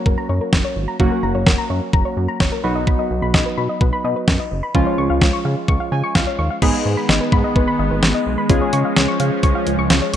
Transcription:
0.00 0.96 F#3 medium
0.00 0.96 A#3 medium
0.00 0.96 C#4 medium
0.00 0.96 F#4 medium
0.06 0.17 F#1 loud
0.06 0.16 A#4 medium
0.06 kick loud
0.18 0.28 A#5 medium
0.29 0.40 F#2 loud
0.29 0.39 C#5 medium
0.41 0.51 A#4 medium
0.53 0.63 F#1 loud
0.53 kick loud
0.53 snare loud
0.65 0.75 C#5 medium
0.76 0.87 G#1 medium
0.88 0.98 A#5 medium
1.00 1.10 F#1 loud
1.00 2.60 F#3 medium
1.00 2.60 A#3 medium
1.00 2.60 C#4 medium
1.00 2.60 F#4 medium
1.00 kick loud
1.11 1.22 A#4 medium
1.23 1.34 F#1 loud
1.23 1.33 A#5 medium
1.35 1.45 F#1 loud
1.35 1.45 C#5 medium
1.47 1.57 F#1 loud
1.47 1.57 A#4 medium
1.47 kick loud
1.47 snare loud
1.58 1.68 A#5 medium
1.70 1.81 F#2 loud
1.70 1.80 C#5 medium
1.93 2.04 F#1 loud
1.93 2.04 A#5 medium
1.93 kick loud
2.05 2.15 C#5 medium
2.17 2.28 F#2 medium
2.28 2.39 A#5 loud
2.40 2.51 F#1 loud
2.40 2.50 C#5 medium
2.40 kick loud
2.40 snare loud
2.52 2.62 A#4 medium
2.64 2.96 B1 loud
2.64 4.48 F#3 medium
2.64 4.47 B3 medium
2.64 4.48 D#4 medium
2.64 4.48 F#4 medium
2.64 2.74 B5 medium
2.75 2.86 D#5 medium
2.87 2.97 B5 medium
2.87 kick loud
2.99 3.09 D#5 medium
3.11 3.21 B1 loud
3.22 3.33 B1 loud
3.22 3.32 B5 loud
3.34 3.45 B1 loud
3.34 3.44 D#5 medium
3.34 kick loud
3.34 snare loud
3.46 3.56 B4 medium
3.57 3.68 B2 medium
3.57 3.68 B5 medium
3.69 3.79 D#5 medium
3.81 3.92 B1 loud
3.81 3.91 B4 medium
3.81 kick loud
3.93 4.03 B5 loud
4.04 4.15 B2 loud
4.04 4.15 D#5 medium
4.16 4.26 B4 medium
4.28 4.38 F#2 medium
4.28 kick loud
4.28 snare loud
4.40 4.50 D#5 medium
4.51 4.62 F#1 medium
4.63 4.73 B5 loud
4.75 4.85 C#2 loud
4.75 6.58 F3 medium
4.75 6.58 G#3 medium
4.75 6.58 C#4 medium
4.75 6.58 F4 medium
4.75 kick loud
4.87 4.97 C#5 medium
4.98 5.09 C#2 loud
4.98 5.08 C#6 medium
5.10 5.20 C#2 loud
5.10 5.20 F5 medium
5.21 5.32 C#2 loud
5.21 5.32 C#5 medium
5.21 kick loud
5.21 snare loud
5.33 5.43 C#6 medium
5.45 5.56 C#3 loud
5.45 5.55 F5 medium
5.68 5.79 C#2 loud
5.68 5.79 C#6 medium
5.68 kick loud
5.80 5.90 F5 medium
5.92 6.02 C#3 loud
5.92 6.14 G#5 medium
6.04 6.14 C#6 loud
6.15 6.26 C#2 loud
6.15 6.25 F5 medium
6.15 6.59 F5 medium
6.15 kick loud
6.15 snare loud
6.27 6.37 C#5 medium
6.39 6.49 D#2 medium
6.39 6.49 C#6 medium
6.50 6.61 F5 medium
6.62 6.73 G#1 loud
6.62 8.48 D#3 medium
6.62 10.16 G#3 medium
6.62 8.46 G#3 medium
6.62 8.48 B3 medium
6.62 8.46 B3 medium
6.62 8.46 D#4 medium
6.62 8.46 G#4 medium
6.62 6.72 B5 loud
6.62 kick loud
6.62 crash medium
6.74 6.84 D#5 medium
6.86 6.96 G#2 loud
6.97 7.07 B5 loud
7.09 7.20 G#1 loud
7.09 7.19 D#5 medium
7.09 snare loud
7.21 7.31 B4 medium
7.32 7.43 G#2 loud
7.32 7.43 B5 loud
7.32 kick medium
7.44 7.54 D#5 medium
7.56 7.66 G#1 loud
7.56 7.66 B4 medium
7.56 kick medium
7.68 7.78 B5 medium
7.79 7.90 G#1 loud
7.79 7.90 D#5 medium
7.91 8.02 G#1 medium
7.91 8.01 B4 medium
8.03 8.13 G#1 loud
8.03 snare loud
8.14 8.25 D#5 medium
8.26 8.37 B1 medium
8.38 8.48 B5 medium
8.49 8.60 C#2 loud
8.49 10.16 F3 medium
8.49 10.16 G#3 medium
8.49 10.16 C#4 medium
8.49 10.16 F4 medium
8.49 10.16 G#4 medium
8.49 kick loud
8.49 closed hi-hat medium
8.61 8.72 C#5 medium
8.73 8.84 C#3 loud
8.73 8.83 C#6 medium
8.73 closed hi-hat medium
8.85 8.95 F5 medium
8.96 9.07 C#2 loud
8.96 9.07 C#5 medium
8.96 snare loud
8.96 closed hi-hat medium
9.08 9.18 C#6 medium
9.20 9.31 C#3 loud
9.20 9.30 F5 medium
9.20 closed hi-hat medium
9.43 9.54 C#2 loud
9.43 9.54 C#6 medium
9.43 kick medium
9.43 closed hi-hat medium
9.55 9.65 F5 medium
9.67 9.77 C#2 loud
9.67 closed hi-hat medium
9.79 9.89 C#2 loud
9.79 9.89 C#6 loud
9.90 10.01 C#2 loud
9.90 10.00 F5 medium
9.90 snare loud
9.90 closed hi-hat medium
10.02 10.12 C#5 medium

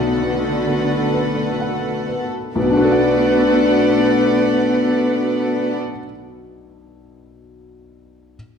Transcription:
0.00 2.53 B1 soft
0.00 2.07 D3 soft
0.00 2.12 A3 soft
0.00 2.27 B3 soft
0.00 2.12 F#4 medium
0.00 2.27 F#4 soft
0.00 2.28 A4 soft
0.00 2.32 B4 soft
0.00 2.07 D5 soft
0.00 2.28 F#5 soft
0.23 0.95 B3 soft
0.68 1.40 A4 soft
1.14 1.88 B4 soft
1.60 2.37 F#5 soft
2.08 2.56 B4 soft
2.56 5.76 B1 soft
2.56 5.76 A3 soft
2.56 5.77 B3 soft
2.56 5.77 B3 medium
2.56 5.77 D4 soft
2.56 5.77 F#4 medium
2.56 5.77 A4 soft
2.56 5.77 B4 medium
2.56 5.77 D5 soft
2.56 5.77 F#5 soft
2.63 5.83 B2 soft
2.70 5.91 D4 soft
2.77 5.97 F#4 soft
2.84 6.05 A4 soft
2.91 6.11 F#5 soft

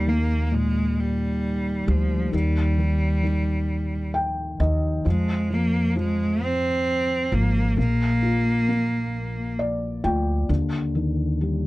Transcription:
0.00 1.84 D#2 medium
0.00 2.29 D#4 soft
0.06 1.84 D#3 soft
0.06 0.46 A#3 medium
0.46 0.56 A#3 soft
0.52 2.29 A#2 soft
0.52 1.01 G#3 medium
0.99 1.91 G3 medium
1.87 2.31 D2 medium
1.87 2.34 F3 medium
1.87 2.32 G3 soft
2.32 4.56 D#2 medium
2.32 2.76 D#3 soft
2.32 4.12 G3 medium
2.78 3.21 D#3 soft
3.23 4.59 D#3 soft
4.14 4.56 G5 medium
4.60 5.02 D#2 medium
4.60 5.04 D#3 soft
4.60 5.02 D#5 medium
5.05 7.28 F2 medium
5.05 5.49 F3 medium
5.09 5.55 G#3 medium
5.50 5.94 F3 soft
5.50 5.98 A#3 medium
5.96 7.30 F3 soft
5.96 6.45 G#3 medium
6.44 7.36 C4 medium
7.32 7.75 G#1 medium
7.32 7.76 F3 soft
7.32 7.78 A#3 medium
7.77 10.00 A#1 medium
7.77 8.67 A#3 soft
7.77 9.56 A#3 medium
8.22 10.00 F4 soft
8.68 10.46 A#3 soft
9.59 10.01 D5 soft
10.04 10.47 D2 medium
10.04 10.48 F4 soft
10.04 10.46 G5 soft
10.49 11.67 D#2 medium
10.49 11.67 D3 soft
10.95 11.67 D#3 soft
11.41 11.67 G3 soft

